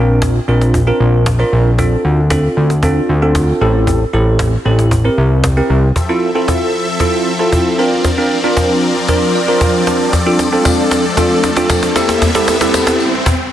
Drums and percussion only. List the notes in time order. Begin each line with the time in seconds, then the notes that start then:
0.22 cajon bass, cajon slap
0.61 cajon slap
0.74 cajon bass
1.26 cajon bass, cajon slap
1.79 cajon bass
2.30 cajon bass, cajon slap
2.70 cajon slap
2.83 cajon bass
3.35 cajon bass, cajon slap
3.87 cajon bass
4.39 cajon bass, cajon slap
4.79 cajon slap
4.91 cajon bass
5.44 cajon bass, cajon slap
5.96 cajon bass, cajon slap
6.48 cajon bass, cajon slap
7.00 cajon bass, cajon slap
7.52 cajon bass, cajon slap
8.05 cajon bass, cajon slap
8.57 cajon bass, cajon slap
9.08 cajon bass, cajon slap
9.61 cajon bass, cajon slap
9.87 cajon slap
10.13 cajon bass, cajon slap, tambourine
10.26 cajon slap
10.39 cajon slap, tambourine
10.52 cajon slap
10.65 cajon bass, cajon slap, tambourine
10.78 cajon slap
10.91 cajon slap, tambourine
11.05 cajon slap
11.17 cajon bass, cajon slap, tambourine
11.31 cajon slap
11.44 cajon slap, tambourine
11.57 cajon slap
11.70 cajon bass, cajon slap, tambourine
11.83 cajon slap
11.96 cajon slap, tambourine
12.09 cajon slap
12.22 cajon bass, cajon slap, tambourine
12.35 cajon slap
12.48 cajon slap, tambourine
12.61 cajon slap
12.74 cajon slap, tambourine
12.87 cajon slap
13.00 tambourine
13.13 cajon slap
13.26 cajon bass, cajon slap